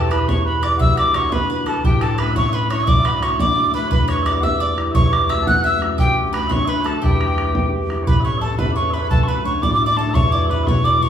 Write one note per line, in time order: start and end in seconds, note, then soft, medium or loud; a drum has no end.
0.00 0.85 E2 medium
0.00 1.89 A3 soft
0.00 0.11 B3 soft
0.00 1.15 D4 soft
0.00 0.12 E4 soft
0.00 0.12 G4 medium
0.00 0.10 A4 medium
0.00 0.13 A5 medium
0.07 0.11 C#5 medium
0.11 0.63 B3 soft
0.11 0.63 E4 soft
0.11 0.64 G4 medium
0.11 0.27 B4 medium
0.11 0.29 B4 medium
0.11 0.30 B5 medium
0.11 bodhran medium
0.28 0.62 C#5 medium
0.28 0.46 C#5 medium
0.28 0.45 C#6 medium
0.28 bodhran medium
0.46 0.63 B4 medium
0.46 0.65 B5 medium
0.63 1.14 B3 medium
0.63 2.19 E4 soft
0.63 1.22 G4 medium
0.63 0.79 D5 medium
0.63 0.77 D5 medium
0.63 0.80 D6 medium
0.63 bodhran medium
0.77 1.89 D2 medium
0.77 0.98 E5 medium
0.77 0.95 E5 medium
0.77 0.81 F#5 medium
0.77 0.96 E6 loud
0.77 bodhran medium
0.95 1.14 D5 medium
0.95 1.12 D5 medium
0.95 0.98 F#5 medium
0.95 1.17 D6 medium
0.95 bodhran medium
1.12 1.66 B3 soft
1.12 1.67 D4 soft
1.12 1.31 C#5 medium
1.12 1.16 E5 medium
1.12 1.34 C#6 medium
1.12 bodhran medium
1.16 1.68 F#4 medium
1.16 1.29 C#5 medium
1.29 1.48 B4 medium
1.29 1.67 B4 medium
1.29 1.32 E5 medium
1.29 bodhran medium
1.33 1.67 B5 medium
1.50 1.66 B4 medium
1.66 4.25 B3 medium
1.66 2.25 D4 soft
1.66 3.23 F#4 medium
1.66 1.84 A4 medium
1.66 1.80 A4 medium
1.66 1.83 A5 medium
1.66 bodhran medium
1.80 1.84 B4 medium
1.84 2.93 A2 medium
1.84 2.01 G4 medium
1.84 2.02 G4 medium
1.84 2.04 G5 loud
1.84 bodhran medium
2.01 2.15 A4 medium
2.01 2.17 A4 medium
2.01 2.21 A5 medium
2.01 bodhran medium
2.15 2.71 A3 soft
2.15 2.36 B4 medium
2.15 2.31 B4 medium
2.15 2.18 C#5 medium
2.15 bodhran medium
2.19 2.72 C#4 soft
2.19 2.71 E4 medium
2.19 2.36 B5 medium
2.31 2.35 E5 medium
2.35 2.49 C#5 medium
2.35 2.52 C#5 medium
2.35 2.56 C#6 loud
2.35 bodhran medium
2.49 2.70 B4 medium
2.49 2.52 E5 medium
2.53 2.69 B4 medium
2.53 2.70 B5 medium
2.70 3.22 A3 medium
2.70 2.94 C#4 soft
2.70 4.26 E4 medium
2.70 2.83 C#5 medium
2.70 2.86 C#5 medium
2.70 2.90 C#6 medium
2.70 bodhran medium
2.83 3.04 D5 medium
2.83 2.88 E5 medium
2.88 3.97 D2 medium
2.88 2.99 D5 medium
2.88 3.07 D6 loud
2.88 bodhran medium
2.99 3.08 E5 medium
3.05 3.21 B4 medium
3.05 3.11 F#5 medium
3.05 3.24 B5 medium
3.05 bodhran medium
3.11 3.23 D5 medium
3.22 3.74 A3 soft
3.22 3.75 D4 soft
3.22 3.75 F#4 medium
3.22 3.40 C#5 medium
3.22 3.39 C#5 medium
3.22 3.39 C#6 medium
3.22 bodhran medium
3.39 3.70 D5 medium
3.39 3.72 D5 medium
3.39 3.72 D6 loud
3.39 bodhran medium
3.70 5.29 A3 medium
3.70 3.90 B4 medium
3.70 3.87 B4 medium
3.70 3.74 E5 medium
3.75 5.36 D4 medium
3.75 4.33 F#4 medium
3.75 3.91 B5 medium
3.87 4.07 B4 medium
3.87 3.92 C#5 medium
3.87 bodhran medium
3.92 4.94 E2 medium
3.92 4.09 B4 medium
3.92 4.08 B5 loud
4.08 4.25 C#5 medium
4.08 4.22 C#5 medium
4.08 4.28 C#6 medium
4.08 bodhran medium
4.22 4.77 B3 soft
4.22 4.42 D5 medium
4.22 4.26 E5 medium
4.22 bodhran medium
4.26 4.77 E4 soft
4.26 4.78 G4 medium
4.26 4.40 D5 medium
4.26 4.45 D6 medium
4.40 4.59 E5 medium
4.40 4.61 E5 medium
4.40 4.44 F#5 medium
4.40 4.62 E6 loud
4.40 bodhran medium
4.60 4.77 D5 medium
4.60 4.91 D5 medium
4.60 4.78 D6 loud
4.77 7.37 B3 soft
4.77 7.38 E4 soft
4.77 5.36 G4 medium
4.77 bodhran medium
4.91 6.04 E2 medium
4.91 5.31 C#5 medium
4.91 4.95 E5 medium
4.91 5.14 C#6 loud
4.91 bodhran medium
4.95 5.13 C#5 medium
5.13 5.30 D5 medium
5.13 5.31 D6 medium
5.13 bodhran medium
5.29 5.81 A3 soft
5.29 5.81 C#4 soft
5.29 5.82 F#4 medium
5.29 5.46 E5 medium
5.29 5.42 E5 medium
5.29 5.46 E6 loud
5.29 bodhran medium
5.42 5.47 A5 loud
5.47 5.64 F#5 loud
5.47 5.63 F#5 medium
5.47 5.63 F#6 loud
5.47 bodhran medium
5.64 5.80 E5 medium
5.64 5.99 E5 medium
5.64 5.81 E6 loud
5.81 6.33 A3 medium
5.81 6.05 C#4 soft
5.81 6.34 F#4 medium
5.81 bodhran medium
5.98 7.08 D2 medium
5.98 6.15 G4 medium
5.98 6.33 G4 medium
5.98 6.16 G5 loud
5.98 bodhran medium
6.33 6.85 A3 soft
6.33 6.85 D4 soft
6.33 6.86 F#4 medium
6.33 6.49 B4 medium
6.33 6.47 B4 medium
6.33 6.54 B5 medium
6.33 bodhran medium
6.47 6.66 C#5 medium
6.47 6.64 C#5 medium
6.47 6.51 E5 medium
6.47 bodhran medium
6.52 6.70 C#6 loud
6.64 6.84 B4 medium
6.64 6.81 B4 medium
6.64 6.68 E5 medium
6.69 6.88 B5 medium
6.81 7.03 A4 medium
6.81 6.85 C#5 medium
6.85 9.28 A3 medium
6.85 8.32 D4 soft
6.85 7.45 F#4 medium
6.85 7.03 A4 medium
6.85 7.04 A5 medium
6.85 bodhran medium
7.02 8.12 E2 medium
7.02 7.68 G4 medium
7.02 8.03 G4 medium
7.02 7.69 G5 loud
7.02 bodhran medium
7.21 bodhran medium
7.38 7.90 B3 soft
7.38 7.90 E4 soft
7.38 7.91 G4 medium
7.38 bodhran medium
7.55 bodhran medium
7.90 8.24 B3 medium
7.90 10.33 E4 soft
7.90 9.35 G4 medium
7.90 bodhran medium
8.03 8.08 C#5 medium
8.07 8.64 A2 medium
8.07 8.23 B4 medium
8.07 8.20 B4 medium
8.07 8.23 B5 medium
8.07 bodhran medium
8.20 8.24 E5 medium
8.24 8.41 B3 soft
8.24 8.42 C#4 soft
8.24 8.42 A4 medium
8.24 8.38 C#5 medium
8.24 8.41 C#5 medium
8.24 8.40 C#6 medium
8.38 8.76 B3 soft
8.38 8.58 A4 medium
8.38 8.59 A4 medium
8.38 8.41 E5 medium
8.38 8.58 A5 medium
8.43 8.76 C#4 soft
8.43 8.77 A4 medium
8.59 9.16 E2 medium
8.59 8.75 B4 medium
8.59 8.72 B4 medium
8.59 8.75 B5 medium
8.59 bodhran medium
8.72 8.92 C#5 medium
8.72 8.76 D5 medium
8.72 8.95 C#6 medium
8.76 8.93 B3 soft
8.76 8.93 C#4 soft
8.76 8.94 A4 medium
8.76 8.90 C#5 medium
8.76 bodhran soft
8.90 11.09 B3 medium
8.90 9.17 C#4 soft
8.90 9.02 B4 medium
8.90 9.10 B4 medium
8.90 8.94 E5 medium
8.90 9.10 B5 medium
8.95 11.09 A4 medium
9.02 9.06 C#5 medium
9.06 9.11 B4 medium
9.06 9.25 A5 loud
9.11 10.20 D2 medium
9.11 9.28 A4 medium
9.11 9.27 A4 medium
9.11 bodhran medium
9.23 9.29 C#6 medium
9.28 9.45 A3 medium
9.28 9.45 D4 medium
9.28 9.46 F#4 medium
9.28 9.45 B4 medium
9.28 9.44 B5 medium
9.45 9.80 A3 soft
9.45 9.80 D4 soft
9.45 9.81 F#4 medium
9.45 9.62 C#5 medium
9.45 9.64 C#6 medium
9.62 10.20 A2 medium
9.62 9.82 D5 medium
9.62 9.74 D5 medium
9.62 9.73 D6 medium
9.62 bodhran medium
9.74 9.85 D6 medium
9.80 9.97 A3 soft
9.80 9.98 D4 soft
9.80 9.98 F#4 medium
9.80 9.86 E5 medium
9.80 bodhran soft
9.85 9.96 D5 medium
9.85 9.97 D5 medium
9.85 9.98 D6 loud
9.96 11.09 A3 medium
9.96 11.09 D4 soft
9.96 10.33 F#4 medium
9.96 10.10 A4 medium
9.96 10.15 A4 medium
9.96 10.16 A5 medium
10.10 10.14 E5 medium
10.14 11.09 E2 medium
10.14 10.45 C#5 medium
10.14 10.31 C#5 medium
10.14 10.33 C#6 loud
10.14 bodhran medium
10.32 10.50 G3 medium
10.32 10.51 E4 soft
10.32 10.52 F#4 medium
10.32 10.48 D5 medium
10.32 10.51 D6 medium
10.45 10.50 E5 medium
10.50 10.84 G3 soft
10.50 10.85 E4 soft
10.50 10.86 F#4 medium
10.50 10.63 B4 medium
10.50 10.68 B4 medium
10.50 10.68 B5 medium
10.63 10.84 C#5 medium
10.63 10.67 E5 medium
10.63 10.86 C#6 medium
10.63 bodhran medium
10.68 11.09 B2 medium
10.68 10.84 C#5 medium
10.84 11.01 G3 soft
10.84 11.02 E4 soft
10.84 11.02 F#4 medium
10.84 11.09 D5 medium
10.84 11.01 D5 medium
10.84 11.03 D6 medium
10.84 bodhran soft
11.02 11.09 G3 soft
11.02 11.09 E4 soft
11.02 11.09 F#4 medium
11.02 11.09 C#5 medium
11.02 11.09 C#6 medium